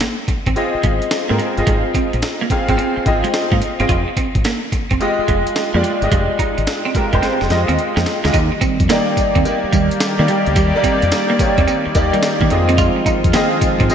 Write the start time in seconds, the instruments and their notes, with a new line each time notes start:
0.00 clean electric guitar A#3, snare, closed hi-hat
0.28 muted fingered electric bass stroke, muted clean electric guitar stroke, kick, closed hi-hat
0.46 fingered electric bass G#1, clean electric guitar C4, kick, closed hi-hat
0.56 grand piano C4 F4 G#4 D#5, closed hi-hat
0.75 muted fingered electric bass stroke
0.83 fingered electric bass G#1, clean electric guitar G#3, kick, closed hi-hat
1.02 closed hi-hat
1.11 muted clean electric guitar stroke, snare, closed hi-hat
1.29 fingered electric bass G#2, clean electric guitar A#3, grand piano C4 F4 G#4 A#4
1.39 clean electric guitar G#3, closed hi-hat
1.57 fingered electric bass G1, grand piano C4 F4 G#4 D#5, closed hi-hat
1.67 fingered electric bass G#1, clean electric guitar G#3, kick, closed hi-hat
1.95 clean electric guitar C4, kick, closed hi-hat
2.13 fingered electric bass A#1, muted clean electric guitar stroke, closed hi-hat
2.22 snare, closed hi-hat
2.41 clean electric guitar A#3
2.50 grand piano C4 F4 G#4 F5, muted fingered electric bass stroke, muted clean electric guitar stroke, kick, closed hi-hat
2.68 fingered electric bass G#1, clean electric guitar C4, grand piano C4 F4 G#4 F5, kick, closed hi-hat
2.78 clean electric guitar C4, closed hi-hat
2.96 muted clean electric guitar stroke, muted fingered electric bass stroke
3.06 fingered electric bass G#1, grand piano C4 F4 G#4 D#5, kick, closed hi-hat
3.24 clean electric guitar G#3, closed hi-hat
3.34 snare, closed hi-hat
3.52 fingered electric bass G#2, clean electric guitar A#3, kick
3.62 muted clean electric guitar stroke, closed hi-hat
3.80 fingered electric bass G1, grand piano C4 F4 G#4 D#5, clean electric guitar C4, closed hi-hat
3.89 fingered electric bass F1, clean electric guitar F4, kick, closed hi-hat
4.08 muted clean electric guitar stroke
4.17 clean electric guitar C4, kick, closed hi-hat
4.35 fingered electric bass G#1, kick, closed hi-hat
4.44 clean electric guitar A#3, snare, closed hi-hat
4.72 muted clean electric guitar stroke, muted fingered electric bass stroke, kick, closed hi-hat
4.91 fingered electric bass F1, clean electric guitar C4, kick, closed hi-hat
5.00 grand piano G#3 F4 G4 D#5, closed hi-hat
5.19 muted fingered electric bass stroke
5.28 fingered electric bass F1, clean electric guitar G#3, kick, closed hi-hat
5.47 closed hi-hat
5.56 muted clean electric guitar stroke, snare, closed hi-hat
5.74 fingered electric bass F2, grand piano G#3 F4 G4 D5, clean electric guitar A#3
5.83 clean electric guitar G#3, closed hi-hat
6.02 fingered electric bass G1, grand piano G#3 F4 G4 D#5, closed hi-hat
6.12 fingered electric bass F1, clean electric guitar G#3, kick, closed hi-hat
6.39 clean electric guitar D#4, kick, closed hi-hat
6.58 fingered electric bass G#1, muted clean electric guitar stroke, closed hi-hat
6.67 snare, closed hi-hat
6.85 clean electric guitar C4
6.95 grand piano G#3 F4 G4 A#4, muted fingered electric bass stroke, muted clean electric guitar stroke, kick, closed hi-hat
7.13 fingered electric bass F1, clean electric guitar G#3, grand piano G#3 F4 G4 C5, kick, closed hi-hat
7.22 clean electric guitar C4, snare, closed hi-hat
7.41 fingered electric bass F1, muted clean electric guitar stroke, snare
7.50 fingered electric bass F2, grand piano G#3 F4 G4 D#5, snare, closed hi-hat
7.68 fingered electric bass D#2, clean electric guitar C4, closed hi-hat
7.79 closed hi-hat
7.96 fingered electric bass F2, clean electric guitar A#3, snare
8.06 muted clean electric guitar stroke, snare, closed hi-hat
8.24 fingered electric bass D2, clean electric guitar G#3, grand piano G#3 F4 G4 D#5, snare, closed hi-hat
8.33 fingered electric bass D#2, analog synth pad D#3 G3 A#3 G4 D5, clean electric guitar D#4, kick, closed hi-hat, tambourine
8.52 muted clean electric guitar stroke
8.61 clean electric guitar C4, kick, closed hi-hat, tambourine
8.80 fingered electric bass F2, kick, closed hi-hat
8.89 clean electric guitar A#3, grand piano A#3 D#4 G4 D5, snare, closed hi-hat, tambourine
9.17 muted clean electric guitar stroke, muted fingered electric bass stroke, kick, closed hi-hat, tambourine
9.35 fingered electric bass D#2, clean electric guitar C4, kick, closed hi-hat
9.45 grand piano A#3 D#4 G4 D5, closed hi-hat, tambourine
9.64 muted fingered electric bass stroke
9.73 fingered electric bass D#2, clean electric guitar G3, kick, closed hi-hat, tambourine
9.91 closed hi-hat
10.00 muted clean electric guitar stroke, snare, closed hi-hat, tambourine
10.19 fingered electric bass D#3, grand piano A#3 D#4 G4 D5, clean electric guitar A#3
10.28 clean electric guitar G3, closed hi-hat
10.46 fingered electric bass D2, closed hi-hat
10.56 fingered electric bass D#2, clean electric guitar G3, kick, closed hi-hat, tambourine
10.75 grand piano A#3 D#4 G4 D5
10.84 clean electric guitar C4, kick, closed hi-hat, tambourine
11.02 fingered electric bass F2, muted clean electric guitar stroke, closed hi-hat
11.12 snare, closed hi-hat, tambourine
11.30 clean electric guitar A#3
11.39 grand piano A#3 D#4 G4 C#5, muted clean electric guitar stroke, muted fingered electric bass stroke, kick, closed hi-hat, tambourine
11.47 grand piano D5
11.58 fingered electric bass D#2, clean electric guitar C4, kick, closed hi-hat
11.68 clean electric guitar C4, closed hi-hat, tambourine
11.86 muted clean electric guitar stroke, muted fingered electric bass stroke
11.95 fingered electric bass D#2, grand piano A#3 D#4 G4 D5, kick, closed hi-hat, tambourine
12.13 clean electric guitar G3, closed hi-hat
12.23 snare, closed hi-hat, tambourine
12.41 fingered electric bass D#3, clean electric guitar A#3, kick
12.50 fingered electric bass F2, analog synth pad F3 G#3 C4 F4, grand piano C4 F4 G#4 D#5, muted clean electric guitar stroke, closed hi-hat
12.69 clean electric guitar C4, closed hi-hat
12.78 clean electric guitar F4, kick, closed hi-hat, tambourine
12.96 muted clean electric guitar stroke
13.06 clean electric guitar D#4, kick, closed hi-hat, tambourine
13.24 fingered electric bass F2, kick, closed hi-hat
13.33 clean electric guitar A#3, grand piano C4 F4 G#4 D#5, snare, closed hi-hat, tambourine
13.61 muted clean electric guitar stroke, muted fingered electric bass stroke, kick, closed hi-hat, tambourine
13.80 fingered electric bass G#2, clean electric guitar C4, kick, closed hi-hat
13.89 grand piano C4 F4 G#4 D#5, closed hi-hat, tambourine